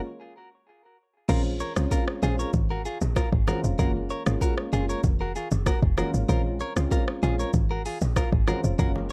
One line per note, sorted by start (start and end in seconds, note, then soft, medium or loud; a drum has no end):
1.28 1.62 A#1 loud
1.28 1.52 G#3 medium
1.28 1.53 C4 medium
1.28 1.53 C#4 medium
1.28 1.53 F4 loud
1.28 1.42 F4 medium
1.28 1.41 A#4 loud
1.28 kick loud
1.28 crash loud
1.28 low conga medium
1.28 shaker medium
1.60 1.73 A#4 medium
1.60 1.72 C#5 medium
1.60 shaker medium
1.76 1.87 C#2 medium
1.76 2.19 G#3 medium
1.76 2.19 C4 medium
1.76 2.19 C#4 medium
1.76 2.19 F4 medium
1.76 cross-stick medium
1.76 shaker medium
1.91 2.04 F4 medium
1.91 2.04 A#4 medium
1.91 kick loud
1.91 high bongo medium
1.91 shaker medium
2.08 cross-stick medium
2.22 2.45 A#1 medium
2.22 2.51 G#3 medium
2.22 2.51 C4 medium
2.22 2.52 C#4 medium
2.22 2.52 F4 medium
2.22 2.35 F4 medium
2.22 2.35 G#4 medium
2.22 low bongo medium
2.22 shaker medium
2.39 2.51 A#4 medium
2.39 2.50 C#5 medium
2.39 shaker medium
2.53 2.87 G#1 loud
2.53 kick loud
2.53 low conga medium
2.53 shaker medium
2.70 2.82 F#4 medium
2.70 2.81 A#4 medium
2.85 2.98 F4 medium
2.85 2.97 G#4 medium
2.85 shaker medium
3.01 3.24 A#1 medium
3.01 low bongo medium
3.01 shaker medium
3.16 3.29 F4 medium
3.16 3.29 A#4 medium
3.16 kick medium
3.16 cross-stick medium
3.16 high bongo medium
3.16 shaker medium
3.32 3.55 G#1 medium
3.32 kick loud
3.47 3.71 G#3 medium
3.47 3.71 C4 medium
3.47 3.71 C#4 medium
3.47 3.72 F4 medium
3.47 3.60 F#4 medium
3.47 3.60 A#4 medium
3.47 cross-stick medium
3.47 high bongo medium
3.47 low conga medium
3.47 shaker medium
3.64 3.75 F1 medium
3.64 shaker medium
3.79 4.13 F#1 loud
3.79 4.02 G#3 medium
3.79 4.03 A#3 medium
3.79 4.03 C#4 medium
3.79 4.03 F4 loud
3.79 3.92 F#4 medium
3.79 3.91 A#4 loud
3.79 kick loud
3.79 low conga medium
3.79 shaker medium
4.10 4.23 A#4 medium
4.10 4.22 C#5 medium
4.10 shaker medium
4.26 4.37 G#1 loud
4.26 4.69 G#3 medium
4.26 4.69 A#3 medium
4.26 4.69 C#4 medium
4.26 4.69 F4 medium
4.26 cross-stick loud
4.26 shaker medium
4.41 4.54 F#4 medium
4.41 4.54 A#4 medium
4.41 kick loud
4.41 high bongo medium
4.41 shaker loud
4.58 cross-stick medium
4.72 4.95 F#1 medium
4.72 5.01 G#3 medium
4.72 5.01 A#3 medium
4.72 5.02 C#4 medium
4.72 5.02 F4 medium
4.72 4.85 F4 medium
4.72 4.85 G#4 medium
4.72 low bongo medium
4.72 shaker medium
4.89 5.01 A#4 medium
4.89 5.00 C#5 medium
4.89 shaker medium
5.03 5.37 F1 loud
5.03 kick loud
5.03 low conga medium
5.03 shaker medium
5.21 5.32 F#4 medium
5.21 5.32 A#4 medium
5.36 5.48 F4 medium
5.36 5.48 G#4 medium
5.36 shaker medium
5.51 5.74 F#1 medium
5.51 low bongo medium
5.51 shaker medium
5.66 5.79 F#4 medium
5.66 5.79 A#4 medium
5.66 kick loud
5.66 cross-stick medium
5.66 high bongo medium
5.66 shaker medium
5.83 6.05 F1 medium
5.83 kick loud
5.97 6.21 G#3 medium
5.97 6.21 A#3 medium
5.97 6.21 C#4 medium
5.97 6.22 F4 medium
5.97 6.11 F#4 medium
5.97 6.10 A#4 medium
5.97 cross-stick medium
5.97 high bongo medium
5.97 low conga medium
5.97 shaker medium
6.14 6.25 G#1 medium
6.14 shaker medium
6.28 6.63 A#1 loud
6.28 6.52 G#3 medium
6.28 6.53 C4 medium
6.28 6.53 C#4 medium
6.28 6.53 F4 loud
6.28 6.42 F4 medium
6.28 6.41 A#4 loud
6.28 kick loud
6.28 low conga medium
6.28 shaker medium
6.60 6.73 A#4 medium
6.60 6.73 C#5 medium
6.60 shaker medium
6.76 6.87 C#2 medium
6.76 7.19 G#3 medium
6.76 7.19 C4 medium
6.76 7.19 C#4 medium
6.76 7.19 F4 medium
6.76 cross-stick medium
6.76 shaker medium
6.91 7.04 F4 medium
6.91 7.04 A#4 medium
6.91 kick loud
6.91 high bongo medium
6.91 shaker medium
7.08 cross-stick medium
7.22 7.45 A#1 medium
7.22 7.51 G#3 medium
7.22 7.51 C4 medium
7.22 7.52 C#4 medium
7.22 7.52 F4 medium
7.22 7.35 F4 medium
7.22 7.35 G#4 medium
7.22 low bongo medium
7.22 shaker medium
7.39 7.51 A#4 medium
7.39 7.50 C#5 medium
7.39 shaker medium
7.53 7.87 G#1 loud
7.53 kick loud
7.53 low conga medium
7.53 shaker medium
7.71 7.82 F#4 medium
7.71 7.82 A#4 medium
7.86 7.98 F4 medium
7.86 7.98 G#4 medium
7.86 open hi-hat medium
7.86 shaker medium
8.01 8.24 A#1 medium
8.01 low bongo medium
8.01 shaker medium
8.16 8.29 F4 medium
8.16 8.29 A#4 medium
8.16 kick loud
8.16 cross-stick medium
8.16 high bongo medium
8.16 shaker medium
8.32 8.55 G#1 medium
8.32 kick loud
8.47 8.71 G#3 medium
8.47 8.71 C4 medium
8.47 8.71 C#4 medium
8.47 8.72 F4 medium
8.47 8.61 F#4 medium
8.47 8.60 A#4 medium
8.47 cross-stick medium
8.47 high bongo medium
8.47 low conga medium
8.47 shaker medium
8.64 8.75 F1 medium
8.64 shaker medium
8.79 9.12 F#1 loud
8.79 9.03 G#3 medium
8.79 9.03 A#3 medium
8.79 9.03 C#4 medium
8.79 9.03 F4 loud
8.79 8.92 F#4 medium
8.79 8.91 A#4 loud
8.79 kick loud
8.79 low conga medium
8.79 shaker medium
8.95 low bongo medium